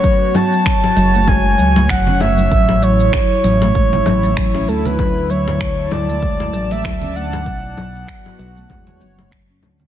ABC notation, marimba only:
X:1
M:4/4
L:1/16
Q:"Swing 16ths" 1/4=97
K:A
V:1 name="Marimba" clef=bass
F, z F,4 F, A, G, z F, A, F, C A, z | F, z F,4 F, A, G, z F, A, F, C A, z | F, z F,4 F, A, G, z F, A, F, C A, z | F, z F,4 F, A, G, z F, A, F, C A, z |]